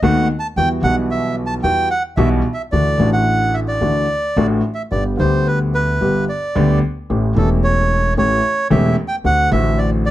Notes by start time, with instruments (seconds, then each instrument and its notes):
0.03 upright bass D#2, grand piano D#2 D#3 A3 B3 F#4, bandoneon F#5
0.39 bandoneon A5
0.56 upright bass E2, grand piano E2 E3 G3 B3 F#4, bandoneon G5
0.81 upright bass B1, grand piano B1 B2 E3 G3 B3, bandoneon F#5
0.86 grand piano F#4
1.11 bandoneon E5
1.46 bandoneon A5
1.63 upright bass E2, grand piano E2 E3 G3 B3 F#4, bandoneon G5
1.90 bandoneon F#5
2.17 upright bass B1, grand piano B1 B2 E3 G3 B3 F#4, bandoneon E5
2.54 bandoneon E5
2.72 upright bass D2, grand piano D2 D3 E3 A3 D4 F#4, bandoneon D5
2.98 upright bass A1, grand piano A1 A2 E3 A3 D4 F#4
3.13 bandoneon F#5
3.54 bandoneon E5
3.68 bandoneon D5
3.81 upright bass D2, grand piano D2 D3 E3 A3 D4 F#4
4.37 upright bass A1, grand piano A1 A2 E3 A3 D4 F#4
4.74 bandoneon E5
4.91 grand piano G1 G2 D3 G3 B3 G4, upright bass G1, bandoneon D5
5.18 upright bass D2, grand piano D2 D3 G3 B3 G4, bandoneon C5
5.47 bandoneon B4
5.74 bandoneon B4
6.01 grand piano G1 G2 D3 G3 B3 G4, upright bass G1
6.29 bandoneon D5
6.55 grand piano D2 D3 G3 B3 G4, upright bass D2
7.10 upright bass A1, grand piano A1 A2 E3 A3 C#4 G4
7.35 upright bass E1, grand piano E1 E2 E3 A3 C#4, bandoneon A4
7.39 grand piano G4
7.64 bandoneon C#5
8.17 upright bass A1, grand piano A1 A2 E3 A3 C#4 G4, bandoneon C#5
8.70 grand piano E1 E2 E3 A3 C#4 G4, upright bass E1, bandoneon E5
9.08 bandoneon G5
9.24 upright bass D2, grand piano D2 D3 A3 C4 F#4, bandoneon F#5
9.50 upright bass A1, grand piano A1 A2 D3 A3 C4, bandoneon E5
9.54 grand piano F#4
9.78 bandoneon D5
10.06 bandoneon D5